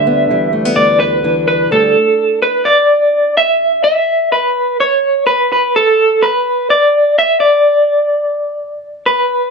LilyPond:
<<
  \new Staff \with { instrumentName = "Clean electric guitar" } { \time 4/4 \key e \dorian \tempo 4 = 126 e''4. d''8 b'4 b'8 a'8~ | a'4 b'8 d''4. e''4 | e''4 b'4 cis''4 b'8 b'8 | a'4 b'4 d''4 e''8 d''8~ |
d''2. b'4 | }
  \new Staff \with { instrumentName = "Steel-string acoustic guitar" } { \clef bass \time 4/4 \key e \dorian << { <g b d'>8 g8 a16 b4~ b16 d'4 g8 | r1 | r1 | r1 |
r1 | } \\ { <d, d>8 e4 d,4 e4 d,8 | r1 | r1 | r1 |
r1 | } >> }
>>